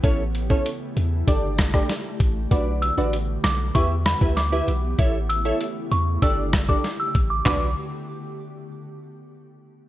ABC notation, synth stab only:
X:1
M:4/4
L:1/16
Q:1/4=97
K:Bm
V:1 name="Synth stab"
[CEAc] z2 [CEAc] z4 [DGAd]3 [DGAd] z4 | [DFBd]3 [DFBd] z4 [EGBe] z2 [EGBe] z [EGBe] z2 | [EAce] z2 [EAce] z4 [DGAd]3 [DGAd] z4 | [DFBd]2 z12 z2 |]